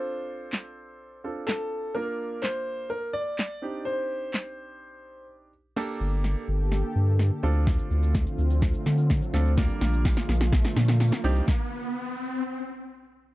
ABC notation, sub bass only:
X:1
M:4/4
L:1/8
Q:1/4=126
K:Gm
V:1 name="Sub bass" clef=bass
z8 | z8 | z8 | z G,,,2 G,,,2 G,,2 D,,- |
D,, D,,2 D,,2 D,2 D,,- | D,, B,,,2 B,,,2 B,,2 C,, | z8 |]